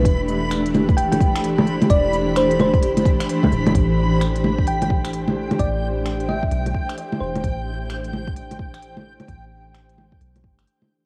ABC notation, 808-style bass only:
X:1
M:4/4
L:1/8
Q:"Swing 16ths" 1/4=130
K:Am
V:1 name="808-style bass" clef=bass
E,,,6- E,,, z | E,,,4 G,,,2 z D,,, | A,,,6- A,,, z | A,,,4 B,,, z2 E,,, |
A,,,6- A,,, z | A,,,4 B,,, G,,, z2 |]